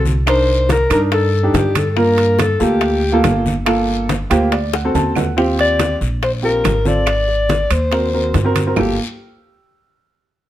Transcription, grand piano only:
Already playing: C4 F#4 A4
0.26 D4 D#4 A#4
0.90 D4 D#4 A#4
1.43 D4 D#4 G4
1.96 A#3 F4 A#4
2.60 A#3 F4 A4
3.12 A#3 F4 A4
3.66 A#3 F4 A4
4.30 A#3 F4 G4 C5
4.52 D5
4.74 F#5
4.84 C4 F#4 A4
4.95 A5
5.16 F#5
5.37 C4 F4 G4
6.42 C4 F4 G4
6.85 C4 F4 A4
7.91 C4 F#4 A#4
8.13 C4 F#4 A#4
8.44 C4 F#4 A#4
8.66 C4 F#4 A#4
8.77 A#3 F4 A4

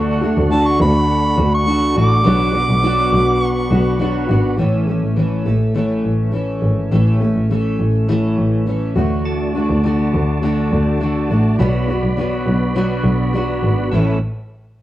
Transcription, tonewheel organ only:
Already playing: D4 F#4 A4 F#5
2.26 F#4 B4
9.26 F#4 A4 D5 A5
11.59 B4 B5
13.91 A3 A4 C#5 E5

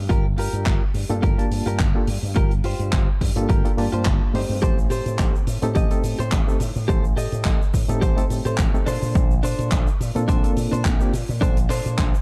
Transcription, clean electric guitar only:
0.09 F4 G4 A#4
0.38 F4 G4 A#4
1.22 F4 G4 A#4
1.66 F4 G4 A#4
1.94 muted clean electric guitar stroke
2.36 F4 G4 A#4
2.64 F4 G4 C5
3.49 F4 G4 A#4
3.92 F4 G4 C5
4.21 muted clean electric guitar stroke
4.62 G4 A4 C5
4.90 G4 A4 C5
5.75 G4 A4 D#5
6.19 G4 A4 C5
6.47 muted clean electric guitar stroke
6.88 G4 A4 C5
7.16 G4 A4 D#5
8.01 G4 A4 C5
8.45 G4 A4 C5
8.74 muted clean electric guitar stroke
8.86 D4 A4 C5
9.43 D4 A4 C5
10.28 D4 A4 C5
10.71 D4 A4 C5
10.99 muted clean electric guitar stroke
11.41 D4 A4 C5
11.69 D4 A4 C5

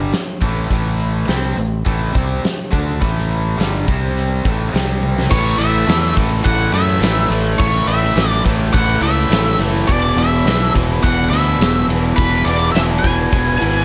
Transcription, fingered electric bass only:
Already playing: G1
0.13 muted fingered electric bass stroke
0.42 A1
0.70 A1
1.28 C2
1.58 A1
1.86 A1
2.15 C2
2.45 muted fingered electric bass stroke
2.73 D2
3.01 A1
3.59 G1
3.88 C2
4.45 A1
4.74 C2
5.32 A1
5.59 A1
5.88 E2
6.17 A1
6.46 A1
6.73 F#2
7.01 A1
7.30 A1
7.60 A1
7.86 A1
8.16 A1
8.45 A1
8.74 A1
9.01 C#2
9.30 A1
9.59 F#1
9.89 E1
10.16 E1
10.44 B1
10.75 E1
11.04 E1
11.31 D2
11.59 E1
11.88 E1
12.18 E1
12.46 E1
12.75 E1
13.04 E1
13.33 E1
13.62 G#1

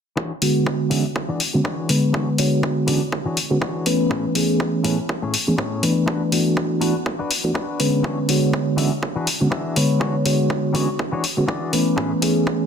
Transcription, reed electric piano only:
0.42 D3 G#3 B3 F#4
0.91 D3 G#3 B3 C#4 F#4
1.54 D3 G#3 B3 C#4 F#4
1.89 D3 G#3 B3 B4
2.38 D3 G#3 B3 F#4 C#5
2.88 D3 G#3 B3 C#4 F#4
3.50 D3 G#3 B3 C#4 F#4
3.86 E3 A3 B3 C#4 B4
4.35 E3 A3 B3 C#4 G#4
4.84 E3 A3 B3 C#4 G#4
5.47 E3 A3 B3 C#4 G#4
5.83 E3 A3 B3 D4 B4
6.32 E3 A3 B3 D4 F#4
6.81 E3 A3 B3 D4 F#4
7.44 E3 A3 B3 D4 F#4
7.79 D3 G#3 B3 C#4 B4
8.29 D3 G#3 B3 F#4 C#5
8.78 D3 G#3 B3 C#4 F#4
9.40 D3 G#3 B3 C#4 F#4
9.76 D3 G#3 B3 B4 C#5
10.25 D3 G#3 B3 F#4 C#5
10.74 D3 G#3 B3 C#4 F#4
11.37 D3 G#3 B3 C#4 F#4
11.73 E3 A3 B3 C#4 B4
12.22 E3 A3 B3 C#4 G#4

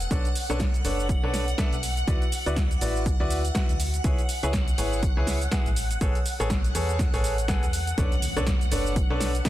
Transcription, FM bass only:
0.11 B1
0.50 B1
0.85 F#1
1.23 B1
1.73 B1
2.08 D2
2.46 D2
2.81 A1
3.20 D2
3.69 D2
4.04 C#2
4.43 C#2
4.78 G#1
5.17 C#2
5.66 A1
6.01 A1
6.40 A1
6.75 E2
7.14 A1
7.63 E2
7.98 B1
8.37 B1
8.72 F#1
9.10 B1

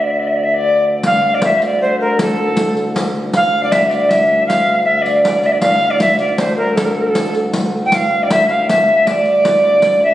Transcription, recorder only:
0.03 D5
0.10 E5
0.19 D5
0.27 E5
0.35 D5
0.43 E5
0.54 D5
1.05 F5
1.34 D5
1.44 E5
1.62 D5
1.81 C5
2.00 A#4
2.20 A4
3.36 F5
3.63 D5
3.71 E5
3.90 D5
4.09 E5
4.46 F5
4.84 E5
5.02 D5
5.22 D5
5.41 D5
5.46 E5
5.51 D5
5.60 F5
5.90 D5
6.00 E5
6.19 D5
6.38 C5
6.56 A#4
6.75 A4
6.84 A#4
6.92 A4
7.01 A#4
7.08 A4
7.85 G5
7.94 F5
8.23 D5
8.31 E5
8.49 F5
8.69 E5
9.06 D5
10.03 E5

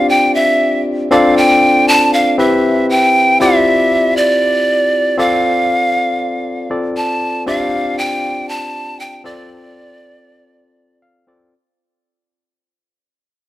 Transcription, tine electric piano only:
Already playing: C4 D4 F4 G4 D5
1.11 C4 D4 F4 A4 D5
2.38 C4 E4 G4 B4 E5
3.40 C4 E4 F4 G4 D5
5.17 C4 F4 A4 D5
6.70 C4 F4 A4 D5
7.46 C4 D4 F4 G4 D5
9.24 C4 F4 A4 D5
11.02 F5
11.27 C4 F4 A4 D5

